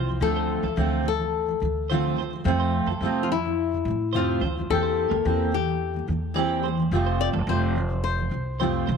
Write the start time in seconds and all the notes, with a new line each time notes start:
Already playing: C2 F4
0.07 F2 C3 F3
0.20 D2 D3 F3 A3 C4 F4 A4
0.36 C5
0.63 D2 D3 F3 A4
0.76 D2 D3 F3 A3 C4 F4
1.03 D3 F3
1.08 A4
1.17 D3 F3
1.46 D3 F3
1.60 D2 D3 F3
1.90 D3 F3 A3 C4 F4 C5
2.17 D3 F3 C5
2.31 D3 F3
2.44 F2 C3 F3 A3 C4 F4
2.59 C5
2.86 F2 C3 F3 A4
3.01 F2 C3 F3 A3 C4 F4
3.23 F4
3.30 F2 C3 F3 E4
3.43 F2 C3 F3
3.72 F2 C3 F3
3.85 F2 A2 C3 F3
4.13 F2 C3 F3 A3 C4 F4 C5
4.41 D2 F2 C3 F3 C5
4.56 F2 C3 F3
4.70 E2 E3 A#3 C4 G4 A4
4.83 C5
5.10 E2 E3 A#3
5.25 E2 E3 A#3 C4 G4
5.52 E3 A#3 G4
5.66 E3 A#3
5.94 E3 A#3
6.08 E2 E3 A#3
6.34 E3 A#3 C4 G4 D5
6.63 E3 A#3 C5
6.77 E3 A#3
6.91 F1 F2 C3 F3 A3 C4 F4
7.06 C5
7.21 D5
7.33 F1 F2 C3 F3 A4
7.47 F1 F2 C3 F3 A3 C4 F4 C5
7.76 F2 C3 F3
7.89 F2 C3 F3
8.04 C5
8.15 F2 C3 F3
8.30 C2 F2 C3 F3
8.59 F2 C3 F3 A3 C4 F4 C5
8.87 C2 F2 C3 F3 C5